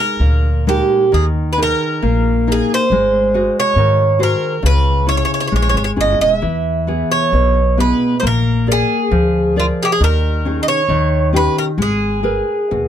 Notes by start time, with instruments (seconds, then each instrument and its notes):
Already playing: nylon-string guitar G#3 D#4 G#4 A#4
0.00 bouzouki A#4
0.20 upright bass D2, nylon-string guitar A#2
0.67 nylon-string guitar G#3 D#4 A#4, bouzouki G4
1.12 upright bass D#2, nylon-string guitar D#3, bouzouki G#4
1.53 bouzouki B4
1.58 nylon-string guitar D#4 G#4 A#4
1.63 bouzouki A#4
2.02 upright bass A#1, nylon-string guitar A#3
2.47 nylon-string guitar D#4 G#4 A#4
2.52 bouzouki G#4
2.74 bouzouki C5
2.90 upright bass G#1, nylon-string guitar G#3
3.34 nylon-string guitar F#4 G#4 D#5
3.60 bouzouki C#5
3.76 upright bass G#2, nylon-string guitar D#3
4.19 nylon-string guitar F#4 G#4 C5, bouzouki A#4
4.63 upright bass C#2, nylon-string guitar C#3, bouzouki B4
5.07 nylon-string guitar C#4 E4 G#4, bouzouki C#5
5.17 bouzouki C#5
5.25 bouzouki C#5
5.34 bouzouki C#5
5.40 bouzouki C#5
5.47 bouzouki C#5
5.52 upright bass A#1, nylon-string guitar G#3, bouzouki C#5
5.62 bouzouki C#5
5.69 bouzouki C#5
5.74 upright bass G#1, bouzouki C#5
5.84 bouzouki C#5
5.96 upright bass G1, nylon-string guitar C#4 E4 G#4
6.01 bouzouki D#5
6.21 upright bass E1, bouzouki D#5
6.32 bouzouki E5
6.42 upright bass E2, nylon-string guitar E3
6.87 nylon-string guitar B3 E4 G#4
7.12 bouzouki C#5
7.32 upright bass B1, nylon-string guitar B2
7.78 nylon-string guitar B3 E4 G#4, bouzouki B4
8.20 upright bass A#1, nylon-string guitar A#3, bouzouki C5
8.27 bouzouki A#4
8.67 nylon-string guitar G#4 A#4 D5
8.72 bouzouki G#4
9.11 upright bass D2, nylon-string guitar F3
9.56 bouzouki F4, nylon-string guitar G#4 A#4 D5
9.83 bouzouki G4 G#4
9.92 bouzouki G#4
10.00 upright bass D#2, nylon-string guitar D#3, bouzouki A#4
10.45 nylon-string guitar C#4 D#4 G#4
10.63 bouzouki D#5
10.68 bouzouki C#5
10.89 upright bass D#2, nylon-string guitar D#3
11.33 nylon-string guitar C#4 D#4 G4, bouzouki B4
11.58 bouzouki A#4
11.78 upright bass G#1, nylon-string guitar G#3
11.82 bouzouki G#4
12.23 nylon-string guitar G#4 A#4 B4
12.71 upright bass D#2, nylon-string guitar B2